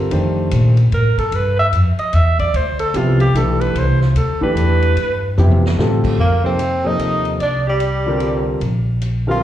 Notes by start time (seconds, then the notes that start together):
0.11 F2 D#3 A3 D4 G4 C5, ride
0.51 A#2, hi-hat pedal, ride
0.77 ride
0.92 A2 A#4, ride
1.17 A4, muted upright bass stroke, kick, ride
1.31 G2, ride
1.35 B4
1.59 E5
1.72 F2, hi-hat pedal, ride
1.98 D#5, muted upright bass stroke, ride
2.13 E2 E5, hi-hat pedal, ride
2.39 D5, kick, ride
2.54 D2 C5, ride
2.79 A4, ride
2.94 C2 C3 F3 B3 E4 F4 G4, hi-hat pedal, ride
3.20 G4, ride
3.34 B1 E3 A3 D4 G4 A4 B4, hi-hat pedal, ride
3.61 B4, ride
3.74 C2, ride
3.78 C5
4.01 F4, snare
4.15 D2 A4, hi-hat pedal, ride
4.41 E3 A3 D4 G4 B4, kick
4.55 E2, hi-hat pedal, ride
4.82 ride
4.96 G2, ride
5.37 F2 C3 F3 B3 E4 G4, hi-hat pedal, mid tom
5.51 mid tom
5.66 snare
5.77 A2 D3 G3 C4 F4 A4, snare
6.04 kick, crash
6.18 F2 A#3 A#4
6.44 C3 F3 A#3 C4 D#4 A4 C5
6.59 hi-hat pedal, ride
6.84 C3 F3 A#3 D#4 A4 D#5
6.99 D#2, hi-hat pedal, ride
7.25 ride
7.40 C2 D4 D5, ride
7.67 G3 G4
7.80 hi-hat pedal, ride
8.06 D3 G3 C4 F4 A#4
8.20 ride
8.60 A#1, ride
9.02 hi-hat pedal, ride
9.27 D3 G3 C4 F4 A#4 F5